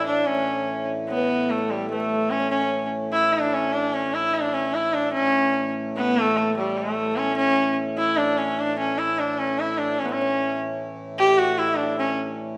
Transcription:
0.00 0.24 A2 medium
0.00 0.24 E3 medium
0.00 0.36 E5 medium
0.06 0.28 D4 medium
0.26 5.14 A2 medium
0.26 5.14 E3 medium
0.26 0.87 C#4 medium
0.35 0.92 C#5 medium
1.09 1.52 B3 medium
1.09 1.17 C#5 soft
1.17 1.59 B4 medium
1.50 1.72 A3 medium
1.58 1.93 A4 medium
1.71 1.90 G3 medium
1.91 2.32 A3 medium
1.91 1.99 B4 soft
2.00 2.38 A4 medium
2.31 2.50 C#4 medium
2.40 2.60 C#5 medium
2.51 2.88 C#4 medium
2.61 2.99 C#5 medium
3.12 3.35 E4 medium
3.33 3.55 D4 medium
3.54 3.74 C#4 medium
3.73 3.96 D4 medium
3.94 4.16 C#4 medium
4.14 4.36 E4 medium
4.34 4.55 D4 medium
4.54 4.76 C#4 medium
4.74 4.95 E4 medium
4.93 5.12 D4 medium
5.13 9.97 A2 medium
5.13 9.96 E3 medium
5.13 5.71 C#4 loud
5.97 6.21 B3 medium
6.21 6.37 A3 medium
6.37 6.57 A3 medium
6.57 6.79 G3 medium
6.78 7.19 A3 medium
7.17 7.37 C#4 medium
7.37 7.75 C#4 medium
7.98 8.19 E4 medium
8.17 8.39 D4 medium
8.38 8.61 C#4 medium
8.59 8.78 D4 medium
8.79 9.00 C#4 medium
8.98 9.20 E4 medium
9.19 9.40 D4 medium
9.38 9.61 C#4 medium
9.60 9.80 E4 medium
9.78 10.00 D4 medium
9.98 12.57 A2 medium
9.98 12.57 E3 medium
9.98 10.07 C#4 medium
10.05 10.14 B3 medium
10.05 10.20 C#5 medium
10.13 10.59 C#4 medium
10.22 10.65 C#5 medium
11.19 11.39 G4 loud
11.27 11.69 G5 medium
11.38 11.60 F#4 medium
11.59 11.79 E4 medium
11.68 12.09 E5 medium
11.78 11.98 D4 medium
11.99 12.17 C#4 medium
12.09 12.27 C#5 soft

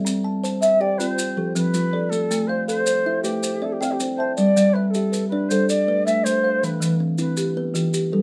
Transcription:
0.00 0.24 C4 medium
0.00 0.24 E5 medium
0.05 0.43 C4 medium
0.05 maracas medium
0.24 0.81 A5 medium
0.43 0.81 C5 medium
0.43 1.00 A5 medium
0.43 maracas medium
0.61 0.82 E5 loud
0.61 1.18 E5 medium
0.61 maracas medium
0.80 0.99 G4 medium
0.80 0.99 D5 loud
0.80 1.18 G5 medium
0.98 1.18 C4 medium
0.98 1.56 F4 medium
0.98 1.55 C5 medium
0.98 1.37 D5 medium
0.98 maracas medium
1.18 1.74 F4 medium
1.18 maracas medium
1.37 1.73 F3 medium
1.37 1.94 G4 medium
1.37 1.92 A4 medium
1.55 1.93 F3 medium
1.55 2.12 C4 medium
1.55 2.11 B4 loud
1.55 maracas medium
1.74 2.12 F3 medium
1.74 2.31 F4 medium
1.74 maracas medium
1.93 2.31 A4 medium
1.93 2.31 D5 medium
1.93 2.50 D5 medium
2.09 2.49 A3 medium
2.09 2.49 A4 loud
2.09 maracas medium
2.31 2.68 A3 medium
2.31 maracas medium
2.47 2.66 C5 medium
2.47 3.06 F5 medium
2.67 3.06 A4 medium
2.67 3.20 C5 loud
2.67 3.24 F5 medium
2.67 maracas medium
2.86 3.41 C5 medium
2.86 maracas medium
3.06 3.25 E4 medium
3.06 3.44 E5 medium
3.22 3.43 A3 medium
3.22 3.65 G4 medium
3.22 3.62 B4 medium
3.22 3.81 C5 medium
3.22 maracas medium
3.43 3.99 C5 medium
3.43 maracas medium
3.62 3.99 C4 medium
3.62 3.73 A4 medium
3.62 4.18 D5 medium
3.62 4.17 E5 medium
3.72 3.84 G4 medium
3.81 4.19 C4 medium
3.81 3.93 F5 medium
3.81 4.37 G5 medium
3.81 maracas medium
3.92 4.00 G4 medium
4.00 4.37 C4 medium
4.00 4.57 C5 medium
4.00 maracas medium
4.16 4.35 C5 medium
4.16 4.56 E5 medium
4.16 4.75 A5 medium
4.20 4.57 A5 medium
4.35 4.75 G3 medium
4.35 4.75 D5 medium
4.35 maracas medium
4.57 4.94 G3 medium
4.57 maracas medium
4.73 4.92 B4 medium
4.73 5.32 E5 medium
4.90 5.27 A4 medium
4.94 5.32 G4 medium
4.94 5.50 E5 medium
4.94 maracas medium
5.12 5.69 B4 medium
5.12 maracas medium
5.28 5.50 B4 medium
5.32 5.51 D4 medium
5.32 5.69 D5 medium
5.49 5.69 G3 medium
5.49 5.68 A4 medium
5.49 6.07 A4 medium
5.49 5.68 C5 medium
5.49 maracas medium
5.69 6.25 A4 medium
5.69 6.04 D5 medium
5.69 maracas medium
5.88 6.24 A3 medium
5.88 6.44 B4 medium
6.06 6.44 A3 medium
6.06 6.25 E5 loud
6.06 6.63 E5 medium
6.06 maracas medium
6.24 6.63 A3 medium
6.24 6.82 A4 medium
6.24 6.64 C5 loud
6.24 maracas medium
6.43 6.81 C5 medium
6.43 7.00 F5 medium
6.43 6.82 F5 medium
6.63 7.01 E3 medium
6.63 7.00 B4 medium
6.63 maracas medium
6.80 7.19 E3 medium
6.80 maracas medium
7.00 7.57 C4 medium
7.18 7.75 C4 medium
7.18 7.56 E4 medium
7.18 7.58 B4 medium
7.18 maracas medium
7.37 7.75 G4 medium
7.37 maracas medium
7.57 7.76 B3 medium
7.57 7.94 B4 medium
7.74 7.93 E3 medium
7.74 8.12 F4 medium
7.74 8.22 G4 medium
7.74 maracas medium
7.94 8.22 G4 medium
7.94 maracas medium
8.12 8.22 G3 medium
8.12 8.22 A4 medium
8.12 8.22 B4 medium

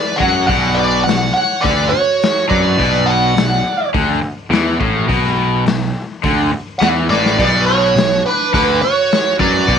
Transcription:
0.00 0.17 B4 medium
0.00 0.19 D5 medium
0.16 0.47 F#3 loud
0.16 0.46 C#5 medium
0.16 0.46 F#5 medium
0.20 0.47 F#2 medium
0.20 kick loud
0.20 snare soft
0.47 1.02 B1 medium
0.47 1.05 B2 loud
0.47 0.75 D5 medium
0.47 0.77 F#5 loud
0.47 kick loud
0.47 open hi-hat medium
0.75 1.04 B4 medium
0.75 1.03 D5 loud
1.04 1.33 B1 medium
1.04 1.29 B2 medium
1.04 1.32 D5 medium
1.04 1.32 F#5 medium
1.04 open hi-hat medium
1.09 snare loud
1.33 1.61 C#5 medium
1.33 1.64 F#5 medium
1.61 1.91 D2 medium
1.61 1.92 D3 medium
1.61 1.89 B4 medium
1.61 1.89 D5 loud
1.61 kick loud
1.61 open hi-hat medium
1.89 2.45 F#4 medium
1.89 2.45 C#5 medium
1.89 muted overdriven electric guitar stroke medium
1.89 muted picked electric bass stroke soft
2.22 snare loud
2.22 open hi-hat medium
2.49 2.77 F#2 medium
2.49 2.78 F#3 loud
2.49 3.03 B4 medium
2.49 3.09 D5 medium
2.49 kick loud
2.78 3.33 B1 medium
2.78 3.35 B2 loud
2.78 kick medium
2.78 open hi-hat soft
3.06 3.90 D5 medium
3.06 3.90 F#5 medium
3.36 3.63 B1 medium
3.36 3.60 B2 medium
3.36 snare loud
3.36 open hi-hat medium
3.94 4.21 D2 medium
3.94 4.22 D3 loud
3.94 kick loud
3.94 open hi-hat medium
4.22 muted overdriven electric guitar stroke medium
4.22 muted picked electric bass stroke soft
4.50 4.78 E2 medium
4.50 4.79 E3 loud
4.50 snare loud
4.50 open hi-hat soft
4.80 5.08 A1 loud
4.80 5.08 A2 loud
4.80 kick loud
5.08 5.63 B1 medium
5.08 5.65 B2 loud
5.08 kick medium
5.08 open hi-hat soft
5.25 snare soft
5.66 5.94 B1 medium
5.66 5.90 B2 medium
5.66 snare loud
5.66 open hi-hat medium
6.23 6.51 D2 medium
6.23 6.52 D3 medium
6.23 kick loud
6.23 open hi-hat medium
6.52 muted picked electric bass stroke soft
6.52 muted overdriven electric guitar stroke medium
6.79 7.09 E2 medium
6.79 7.09 E3 loud
6.79 6.87 F#5 loud
6.79 snare loud
6.79 open hi-hat soft
6.83 6.91 D5 medium
7.10 7.37 A1 medium
7.10 7.38 A2 loud
7.10 7.38 B4 medium
7.10 7.38 D5 medium
7.10 snare medium
7.26 snare medium
7.39 7.93 B1 medium
7.39 7.95 B2 loud
7.39 7.67 B4 medium
7.39 7.66 D5 loud
7.39 kick loud
7.39 open hi-hat medium
7.39 crash medium
7.66 8.22 F#4 medium
7.66 8.21 C#5 loud
7.96 8.23 B1 medium
7.96 8.20 B2 medium
7.96 snare loud
7.96 open hi-hat soft
8.26 8.53 D4 medium
8.26 8.53 B4 medium
8.54 8.81 D2 medium
8.54 8.82 D3 medium
8.54 8.81 D4 medium
8.54 8.84 B4 medium
8.54 kick loud
8.54 open hi-hat medium
8.81 9.37 F#4 medium
8.81 9.36 C#5 medium
8.81 muted overdriven electric guitar stroke medium
8.81 muted picked electric bass stroke soft
9.11 snare loud
9.11 open hi-hat medium
9.39 9.66 F#2 medium
9.39 9.67 F#3 loud
9.39 9.79 B4 medium
9.39 9.79 D5 medium
9.39 kick loud
9.39 snare soft
9.68 9.79 B1 medium
9.68 9.79 B2 medium
9.68 kick loud
9.68 open hi-hat soft

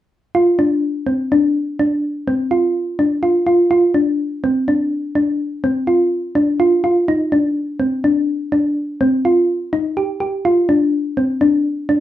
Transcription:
0.35 0.47 F4 medium
0.59 0.84 D4 medium
1.07 1.19 C4 medium
1.32 1.57 D4 medium
1.79 2.04 D4 medium
2.28 2.40 C4 medium
2.51 2.76 F4 medium
2.99 3.12 D4 medium
3.23 3.35 F4 medium
3.47 3.59 F4 medium
3.71 3.83 F4 medium
3.94 4.20 D4 medium
4.44 4.56 C4 medium
4.68 4.93 D4 medium
5.15 5.41 D4 medium
5.64 5.76 C4 medium
5.87 6.13 F4 medium
6.35 6.48 D4 medium
6.60 6.72 F4 medium
6.84 6.97 F4 medium
7.08 7.21 D#4 medium
7.32 7.57 D4 medium
7.80 7.92 C4 medium
8.04 8.29 D4 medium
8.52 8.77 D4 medium
9.01 9.13 C4 medium
9.25 9.50 F4 medium
9.73 9.85 D#4 medium
9.97 10.10 G4 medium
10.20 10.33 G4 medium
10.45 10.58 F4 medium
10.69 10.94 D4 medium
11.17 11.30 C4 medium
11.41 11.66 D4 medium
11.89 12.00 D4 medium

